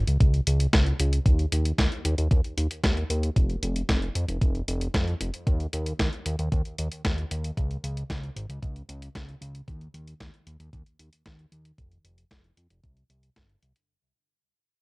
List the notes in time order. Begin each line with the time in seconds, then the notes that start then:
0.07 C#2, closed hi-hat
0.20 C#2, kick, closed hi-hat
0.34 closed hi-hat
0.47 C#2, closed hi-hat
0.60 closed hi-hat
0.73 C#2, kick, snare, closed hi-hat
0.86 closed hi-hat
1.00 C#2, closed hi-hat
1.13 closed hi-hat
1.26 D#2, kick, closed hi-hat
1.39 closed hi-hat
1.52 D#2, closed hi-hat
1.65 closed hi-hat
1.78 D#2, kick, snare, closed hi-hat
1.92 closed hi-hat
2.05 D#2, closed hi-hat
2.18 D#2, closed hi-hat
2.31 D#2, kick, closed hi-hat
2.44 closed hi-hat
2.57 D#2, closed hi-hat
2.71 closed hi-hat
2.84 D#2, kick, snare, closed hi-hat
2.97 closed hi-hat
3.10 D#2, closed hi-hat
3.23 closed hi-hat
3.36 F1, kick, closed hi-hat
3.50 closed hi-hat
3.63 F1, closed hi-hat
3.76 closed hi-hat
3.89 F1, kick, snare, closed hi-hat
4.02 closed hi-hat
4.15 F2, closed hi-hat
4.28 F1, closed hi-hat
4.41 F1, kick, closed hi-hat
4.55 closed hi-hat
4.68 F1, closed hi-hat
4.81 closed hi-hat
4.94 F2, kick, snare, closed hi-hat
5.08 closed hi-hat
5.21 F1, closed hi-hat
5.34 closed hi-hat
5.47 D#2, kick, closed hi-hat
5.60 closed hi-hat
5.73 D#2, closed hi-hat
5.86 closed hi-hat
5.99 D#2, kick, snare, closed hi-hat
6.13 closed hi-hat
6.26 D#2, closed hi-hat
6.39 D#2, closed hi-hat
6.52 D#2, kick, closed hi-hat
6.65 closed hi-hat
6.78 D#2, closed hi-hat
6.92 closed hi-hat
7.05 D#2, kick, snare, closed hi-hat
7.18 closed hi-hat
7.31 D#2, closed hi-hat
7.44 closed hi-hat
7.57 C#2, kick, closed hi-hat
7.71 closed hi-hat
7.84 C#2, closed hi-hat
7.97 closed hi-hat
8.10 C#2, kick, snare, closed hi-hat
8.23 closed hi-hat
8.36 G#1, closed hi-hat
8.49 C#2, closed hi-hat
8.63 C#2, kick, closed hi-hat
8.76 closed hi-hat
8.89 C#2, closed hi-hat
9.02 closed hi-hat
9.15 C#2, kick, snare, closed hi-hat
9.29 closed hi-hat
9.41 C#2, closed hi-hat
9.55 closed hi-hat
9.68 D#2, kick, closed hi-hat
9.81 closed hi-hat
9.94 D#2, closed hi-hat
10.07 closed hi-hat
10.20 D#2, kick, snare, closed hi-hat
10.34 closed hi-hat
10.47 D#2, closed hi-hat
10.60 D#2, closed hi-hat
10.73 D#2, kick, closed hi-hat
10.86 closed hi-hat
10.99 D#2, closed hi-hat
11.13 closed hi-hat
11.26 D#2, kick, snare, closed hi-hat
11.39 closed hi-hat
11.52 D#2, closed hi-hat
11.65 closed hi-hat
11.78 F1, kick, closed hi-hat
11.92 closed hi-hat
12.05 F1, closed hi-hat
12.18 closed hi-hat
12.31 F1, kick, snare, closed hi-hat
12.44 closed hi-hat
12.57 F2, closed hi-hat
12.70 F1, closed hi-hat
12.84 C2, kick, closed hi-hat
12.97 closed hi-hat
13.10 C2, closed hi-hat
13.23 closed hi-hat
13.36 G1, kick, snare, closed hi-hat
13.49 closed hi-hat
13.63 C2, closed hi-hat
13.76 closed hi-hat